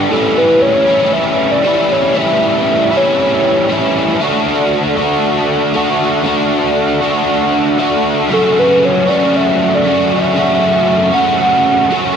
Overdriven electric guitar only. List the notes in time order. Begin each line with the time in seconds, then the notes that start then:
Already playing: B3 D4 G4
0.10 A2 E3 G3 C#4 E4
0.86 E3 G3 C#4 E4
0.90 A2
1.63 A2 E3 G3 C#4 E4
2.14 A2 E3 G3 C#4 E4
2.91 A2 E3 G3 C#4 E4
3.68 A2 E3 G3 C#4 E4
4.19 D3 A3 D4
4.23 F#4
4.96 A3 D4 F#4
5.00 D3
5.73 D3 A3 D4 F#4
6.23 D3 A3 D4 F#4
7.01 D3 A3 D4 F#4
7.78 D3 A3 D4 F#4
8.29 F#2 C#3 F#3 A3 C#4 F#4
9.06 F#2 C#3 F#3 A3 C#4 F#4
9.84 F#2 C#3 F#3 A3 C#4
9.88 F#4
10.34 F#2 C#3 F#3 A3 C#4
10.39 F#4
11.11 F#2 C#3 F#3 A3 C#4 F#4
11.90 F#2 C#3 F#3 A3 C#4 F#4